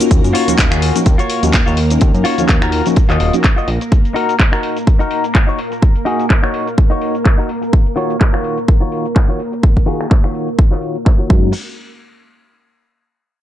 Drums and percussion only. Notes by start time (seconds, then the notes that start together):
0.00 closed hi-hat, shaker
0.11 kick, closed hi-hat, shaker
0.24 closed hi-hat, shaker
0.35 open hi-hat
0.48 closed hi-hat, shaker
0.58 kick, clap, closed hi-hat, shaker
0.72 finger snap, closed hi-hat, shaker
0.82 open hi-hat
0.96 closed hi-hat, shaker
1.06 kick, closed hi-hat, shaker
1.19 closed hi-hat, shaker
1.30 open hi-hat
1.43 closed hi-hat, shaker
1.53 kick, clap, closed hi-hat, shaker
1.67 shaker
1.77 open hi-hat
1.90 closed hi-hat, shaker
2.01 kick, closed hi-hat, shaker
2.14 closed hi-hat, shaker
2.25 open hi-hat
2.38 closed hi-hat, shaker
2.49 kick, clap, closed hi-hat, shaker
2.62 finger snap, closed hi-hat, shaker
2.72 open hi-hat
2.86 closed hi-hat, shaker
2.96 kick, closed hi-hat, shaker
3.10 clap, closed hi-hat, shaker
3.20 open hi-hat
3.33 closed hi-hat, shaker
3.44 kick, clap, closed hi-hat, shaker
3.58 shaker
3.68 open hi-hat
3.81 closed hi-hat, shaker
3.92 kick, closed hi-hat, shaker
4.05 closed hi-hat, shaker
4.16 open hi-hat
4.29 closed hi-hat, shaker
4.40 kick, clap, closed hi-hat, shaker
4.53 finger snap, closed hi-hat, shaker
4.63 open hi-hat
4.77 closed hi-hat, shaker
4.87 kick, closed hi-hat, shaker
5.00 closed hi-hat, shaker
5.11 open hi-hat
5.24 closed hi-hat, shaker
5.35 kick, clap, closed hi-hat, shaker
5.49 shaker
5.59 open hi-hat
5.72 closed hi-hat, shaker
5.82 kick, closed hi-hat, shaker
5.96 closed hi-hat, shaker
6.06 open hi-hat
6.19 closed hi-hat, shaker
6.30 kick, clap, closed hi-hat, shaker
6.44 finger snap, closed hi-hat, shaker
6.54 open hi-hat
6.67 closed hi-hat, shaker
6.78 kick, closed hi-hat, shaker
6.91 closed hi-hat, shaker
7.02 open hi-hat
7.15 closed hi-hat, shaker
7.25 kick, clap, closed hi-hat
7.39 shaker
7.49 open hi-hat
7.62 closed hi-hat, shaker
7.73 kick, closed hi-hat
7.86 closed hi-hat, shaker
7.97 open hi-hat
8.10 closed hi-hat, shaker
8.21 kick, clap
8.34 finger snap, closed hi-hat
8.44 open hi-hat
8.58 closed hi-hat, shaker
8.68 kick
8.82 closed hi-hat, shaker
8.92 open hi-hat
9.06 closed hi-hat, shaker
9.16 kick, clap
9.40 open hi-hat
9.53 closed hi-hat, shaker
9.63 kick
9.77 kick
9.87 open hi-hat
10.01 finger snap, closed hi-hat, shaker
10.11 kick, clap
10.24 finger snap
10.35 open hi-hat
10.48 closed hi-hat, shaker
10.59 kick
10.72 clap
10.82 open hi-hat
10.96 closed hi-hat, shaker
11.06 kick, clap
11.30 kick